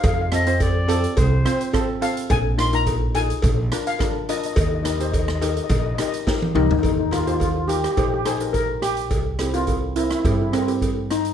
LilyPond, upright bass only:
\new Staff \with { instrumentName = "Upright bass" } { \clef bass \time 4/4 \key ees \major \tempo 4 = 106 f,2 c,8 r4. | bes,,2 bes,,8 r4. | ees,2 bes,,8 r4 c,16 d,16 | ees,2 bes,,2 |
c,2 g,2 | }